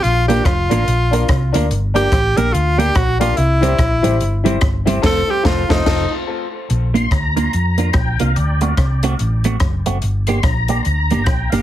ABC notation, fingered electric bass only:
X:1
M:4/4
L:1/8
Q:"Swing" 1/4=144
K:Bb
V:1 name="Fingered electric bass" clef=bass
B,,,2 F,,, A,,, B,,,2 C,, D,, | G,,,2 A,,, B,,, D,,2 B,,,2 | C,,2 B,,, A,,, G,,,2 G,,,2 | F,,, z F,,, F,,, F,,, z3 |
B,,,2 D,,2 F,,2 B,,, C,, | D,,2 C,,2 A,,,2 ^F,,, F,,, | G,,,2 B,,,2 D,, G,,, B,,, G,,, |]